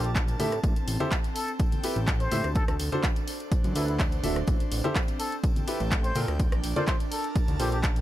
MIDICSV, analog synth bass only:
0, 0, Header, 1, 2, 480
1, 0, Start_track
1, 0, Tempo, 480000
1, 636, Time_signature, 4, 2, 24, 8
1, 8013, End_track
2, 0, Start_track
2, 0, Title_t, "Analog synth bass"
2, 0, Program_c, 0, 38
2, 0, Note_on_c, 0, 34, 90
2, 362, Note_off_c, 0, 34, 0
2, 396, Note_on_c, 0, 45, 100
2, 594, Note_off_c, 0, 45, 0
2, 636, Note_on_c, 0, 33, 100
2, 739, Note_off_c, 0, 33, 0
2, 876, Note_on_c, 0, 33, 89
2, 979, Note_off_c, 0, 33, 0
2, 1962, Note_on_c, 0, 33, 92
2, 2282, Note_off_c, 0, 33, 0
2, 2316, Note_on_c, 0, 45, 100
2, 2419, Note_off_c, 0, 45, 0
2, 2442, Note_on_c, 0, 38, 96
2, 2636, Note_off_c, 0, 38, 0
2, 2683, Note_on_c, 0, 38, 98
2, 2775, Note_off_c, 0, 38, 0
2, 2796, Note_on_c, 0, 38, 87
2, 2899, Note_off_c, 0, 38, 0
2, 3643, Note_on_c, 0, 42, 88
2, 3735, Note_off_c, 0, 42, 0
2, 3756, Note_on_c, 0, 38, 90
2, 4202, Note_off_c, 0, 38, 0
2, 4237, Note_on_c, 0, 26, 98
2, 4434, Note_off_c, 0, 26, 0
2, 4476, Note_on_c, 0, 33, 100
2, 4579, Note_off_c, 0, 33, 0
2, 4716, Note_on_c, 0, 33, 90
2, 4819, Note_off_c, 0, 33, 0
2, 5803, Note_on_c, 0, 33, 97
2, 6122, Note_off_c, 0, 33, 0
2, 6156, Note_on_c, 0, 46, 98
2, 6259, Note_off_c, 0, 46, 0
2, 6283, Note_on_c, 0, 38, 100
2, 6476, Note_off_c, 0, 38, 0
2, 6523, Note_on_c, 0, 34, 95
2, 6615, Note_off_c, 0, 34, 0
2, 6637, Note_on_c, 0, 34, 91
2, 6739, Note_off_c, 0, 34, 0
2, 7483, Note_on_c, 0, 38, 88
2, 7575, Note_off_c, 0, 38, 0
2, 7597, Note_on_c, 0, 34, 95
2, 8013, Note_off_c, 0, 34, 0
2, 8013, End_track
0, 0, End_of_file